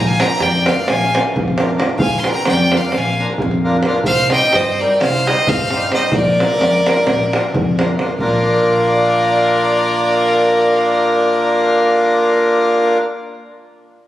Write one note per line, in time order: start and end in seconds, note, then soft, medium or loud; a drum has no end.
0.00 0.21 A#1 loud
0.07 0.22 F5 loud
0.07 0.22 G#5 loud
0.20 0.33 F3 medium
0.20 0.33 A#3 medium
0.20 0.33 D4 medium
0.20 0.33 F4 soft
0.20 0.33 A#4 medium
0.20 0.45 G5 medium
0.20 0.44 A#5 loud
0.20 davul high medium
0.30 davul high soft
0.40 0.69 F2 loud
0.40 0.67 D5 medium
0.40 0.69 G5 loud
0.40 davul high medium
0.65 0.79 F3 medium
0.65 0.79 A#3 medium
0.65 0.79 D4 medium
0.65 0.79 F4 medium
0.65 0.80 A#4 medium
0.65 0.91 D5 medium
0.65 0.91 F5 medium
0.65 davul high medium
0.88 1.16 A#1 medium
0.88 1.15 F5 medium
0.88 1.14 G#5 loud
0.88 davul high medium
1.02 davul high soft
1.13 1.26 F3 medium
1.13 1.27 A#3 medium
1.13 1.27 D4 medium
1.13 1.27 F4 medium
1.13 1.27 A#4 medium
1.13 davul high medium
1.26 davul high soft
1.36 1.74 F2 loud
1.36 davul low loud
1.48 davul high soft
1.56 1.70 F3 medium
1.56 1.71 A#3 medium
1.56 1.71 D4 medium
1.56 1.71 F4 medium
1.56 1.71 A#4 loud
1.56 davul high medium
1.76 1.90 F3 medium
1.76 1.91 A#3 medium
1.76 1.91 D4 medium
1.76 1.91 F4 medium
1.76 1.91 A#4 medium
1.76 davul high medium
1.89 davul high soft
1.98 2.28 A#1 medium
1.98 2.20 F5 medium
1.98 2.21 G#5 loud
1.98 davul low loud
2.18 2.28 G#5 medium
2.18 2.30 C6 medium
2.24 2.38 F3 medium
2.24 2.38 A#3 medium
2.24 2.38 D4 medium
2.24 2.38 F4 medium
2.24 2.38 A#4 medium
2.24 2.47 G5 medium
2.24 davul high medium
2.29 2.48 A#5 loud
2.35 davul high soft
2.45 2.76 F2 loud
2.45 2.74 D5 medium
2.45 2.78 G5 loud
2.45 davul high medium
2.71 2.85 F3 medium
2.71 2.85 A#3 medium
2.71 2.85 D4 medium
2.71 2.86 F4 medium
2.71 2.86 A#4 medium
2.71 2.96 D5 medium
2.71 davul high medium
2.77 2.99 F5 medium
2.92 3.23 A#1 medium
2.92 3.20 F5 medium
2.92 davul high medium
2.98 3.22 G#5 medium
3.05 davul high soft
3.18 3.32 F3 medium
3.18 3.32 A#3 medium
3.18 3.33 D4 medium
3.18 3.33 F4 medium
3.18 3.33 A#4 medium
3.29 davul high soft
3.38 3.81 F2 loud
3.38 davul low medium
3.51 davul high soft
3.63 3.77 F3 medium
3.63 3.77 A#3 medium
3.63 3.77 D4 medium
3.63 3.77 F4 medium
3.63 3.78 A#4 loud
3.83 3.98 F3 medium
3.83 3.98 A#3 medium
3.83 3.99 D4 medium
3.83 davul high medium
3.87 3.99 F4 medium
3.87 3.99 A#4 loud
3.94 davul high soft
4.04 4.35 C2 medium
4.04 4.30 C5 loud
4.04 4.30 F5 loud
4.04 davul low medium
4.30 4.44 G3 medium
4.30 4.44 C4 medium
4.30 4.45 D#4 medium
4.30 4.45 G4 medium
4.30 4.45 C5 medium
4.30 4.56 D#5 medium
4.30 4.56 G5 loud
4.30 davul high medium
4.42 davul high soft
4.53 4.83 G2 loud
4.53 4.83 C5 medium
4.53 4.81 D#5 medium
4.53 davul high medium
4.78 4.92 G3 medium
4.78 4.92 C4 medium
4.78 4.92 D#4 medium
4.78 4.92 G4 medium
4.78 5.02 A#4 medium
4.78 4.93 C5 medium
4.78 5.01 D5 loud
5.01 5.29 C2 medium
5.01 5.30 C5 medium
5.01 5.29 F5 loud
5.01 davul high medium
5.14 davul high soft
5.26 5.39 G3 medium
5.26 5.40 C4 medium
5.26 5.40 D#4 medium
5.26 5.40 G4 medium
5.26 5.40 C5 medium
5.26 5.52 C5 medium
5.26 5.50 D#5 loud
5.26 davul high medium
5.47 5.87 G2 loud
5.47 5.93 F5 loud
5.47 davul low loud
5.52 5.94 C5 medium
5.59 davul high soft
5.70 5.85 G3 medium
5.70 5.85 C4 medium
5.70 5.85 D#4 medium
5.70 5.85 G4 medium
5.70 5.86 C5 medium
5.70 davul high medium
5.92 6.05 G3 medium
5.92 6.06 C4 medium
5.92 6.05 D#4 medium
5.92 6.06 G4 medium
5.92 6.06 C5 medium
5.92 6.17 C5 medium
5.92 6.16 D#5 medium
5.92 davul high medium
6.02 davul high soft
6.12 6.41 A#1 loud
6.12 7.80 D5 loud
6.12 davul low loud
6.16 7.81 A#4 loud
6.27 davul high soft
6.39 6.52 F3 medium
6.39 6.52 A#3 medium
6.39 6.52 D4 medium
6.39 6.53 F4 medium
6.39 6.53 A#4 medium
6.39 davul high medium
6.51 davul high soft
6.60 6.88 F2 loud
6.60 davul high medium
6.74 davul high soft
6.86 6.99 F3 medium
6.86 7.00 A#3 medium
6.86 6.99 D4 medium
6.86 7.00 F4 medium
6.86 7.00 A#4 medium
6.86 davul high medium
6.97 davul high soft
7.07 7.37 A#1 medium
7.07 davul high medium
7.07 davul low medium
7.19 davul high soft
7.33 7.46 F3 medium
7.33 7.47 A#3 medium
7.33 7.47 D4 medium
7.33 7.47 F4 medium
7.33 7.47 A#4 medium
7.33 davul high medium
7.54 7.94 F2 loud
7.54 davul low loud
7.78 7.91 F3 medium
7.78 7.92 A#3 medium
7.78 7.91 D4 medium
7.78 7.92 F4 medium
7.78 7.92 A#4 loud
7.78 davul high medium
7.88 davul high soft
7.99 8.12 F3 medium
7.99 8.13 A#3 medium
7.99 8.13 D4 medium
7.99 8.13 F4 medium
7.99 8.14 A#4 medium
7.99 davul high medium
8.08 davul high soft
8.19 12.98 A#1 loud
8.19 12.97 A#3 loud
8.19 12.98 D4 medium
8.19 12.98 F4 medium
8.19 12.97 A#4 medium
8.19 12.98 A#4 loud
8.19 12.97 D5 medium
8.19 davul low medium